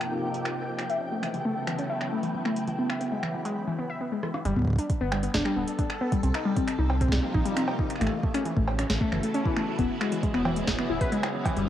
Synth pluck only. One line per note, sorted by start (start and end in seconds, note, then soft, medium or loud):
0.90 0.98 E5 medium
1.01 1.06 C#4 medium
1.12 1.17 A3 medium
1.23 1.32 E3 medium
1.34 1.43 E3 medium
1.45 1.54 A3 loud
1.67 1.76 E3 loud
1.79 1.84 C#4 medium
1.90 1.98 E5 medium
2.01 2.06 C#4 medium
2.12 2.17 A3 medium
2.23 2.32 E3 medium
2.34 2.43 E3 medium
2.45 2.54 A3 medium
2.68 2.76 E3 medium
2.79 2.84 B3 medium
2.90 2.98 E5 medium
3.01 3.06 B3 medium
3.12 3.17 G#3 medium
3.23 3.32 E3 medium
3.34 3.43 E3 medium
3.45 3.54 G#3 medium
3.68 3.76 E3 loud
3.79 3.84 B3 medium
3.90 3.98 E5 medium
4.01 4.06 B3 medium
4.12 4.17 G#3 medium
4.23 4.32 E3 medium
4.34 4.43 E3 medium
4.45 4.56 G3 loud
4.56 4.65 B3 medium
4.79 4.87 D4 medium
5.01 5.11 B3 loud
5.12 5.17 G3 medium
5.23 5.28 B3 medium
5.34 5.39 D4 loud
5.45 5.56 G3 loud
5.56 5.65 B3 medium
5.79 5.87 D4 medium
6.01 6.11 B3 loud
6.12 6.17 G3 medium
6.23 6.28 C4 medium
6.34 6.39 D#4 loud
6.45 6.56 G3 loud
6.56 6.65 C4 medium
6.79 6.87 D#4 medium
7.01 7.11 C4 loud
7.12 7.17 G3 medium
7.23 7.28 C4 medium
7.34 7.39 D#4 loud
7.45 7.56 G3 loud
7.57 7.65 C4 medium
7.79 7.87 D#4 medium
8.01 8.11 A3 loud
8.12 8.17 E3 medium
8.23 8.28 A3 medium
8.34 8.39 C#4 loud
8.45 8.56 E3 loud
8.56 8.65 A3 medium
8.79 8.87 C#4 medium
9.01 9.11 A3 loud
9.12 9.17 E3 medium
9.23 9.28 A3 medium
9.34 9.39 C#4 loud
9.45 9.56 E3 loud
9.56 9.65 A3 medium
9.79 9.87 B3 medium
10.01 10.11 G#3 loud
10.12 10.17 E3 medium
10.23 10.28 G#3 medium
10.34 10.39 B3 loud
10.45 10.56 E3 loud
10.56 10.65 G#3 medium
10.79 10.87 B3 medium
10.90 10.98 E4 loud
11.01 11.11 B4 loud
11.12 11.22 G#3 loud
11.23 11.32 G#3 medium
11.34 11.43 E3 medium
11.45 11.56 E3 loud
11.56 11.65 G3 medium